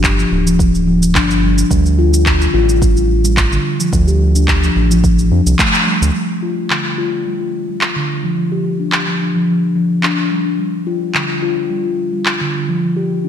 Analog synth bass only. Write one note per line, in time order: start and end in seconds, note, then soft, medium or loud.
0.00 0.25 G1 medium
0.31 1.17 D1 medium
1.15 1.64 G1 loud
1.71 2.47 D2 loud
2.54 3.58 A1 medium
3.93 4.70 D2 loud
4.76 5.31 A1 medium
5.31 5.42 F2 medium
5.46 5.55 C2 medium
6.02 6.11 D2 loud